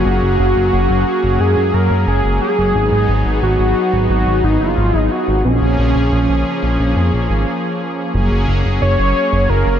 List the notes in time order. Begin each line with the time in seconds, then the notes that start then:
Already playing: F#3 A#3 C#4 G#4
0.06 F#1 F#4
0.22 F#1
0.39 F#1
0.56 F#1
0.73 F#1
0.90 F#1
1.24 F#1
1.40 F#2 G#4
1.57 F#2
1.74 F#2 A#4
1.91 F#2
2.07 F#1 G#4
2.25 F#1
2.42 G#4
2.58 F#1
2.75 G#1 B3 D#4
2.92 G#1
3.09 G#1
3.25 G#1
3.42 G#1 F#4
3.59 G#1
3.93 G#1
4.10 G#1 F#4
4.27 G#1
4.44 G#1 D#4
4.61 F#1 F4
4.77 G#1
4.94 G#1
4.99 D#4
5.11 F#4
5.28 G#1
5.45 A#1 F3 A#3 C#4 G#4
5.62 A#1
5.79 A#1
5.95 A#1
6.12 A#1
6.29 A#1
6.63 A#1
6.80 A#1
6.96 F2
7.13 A#1
7.30 G#1
8.14 F#1 F#3 A#3 C#4 G#4
8.31 F#1
8.48 F#1
8.65 F#1
8.82 F#1 C#5
8.99 F#1
9.33 F#1
9.49 F#1 A#4
9.66 F#1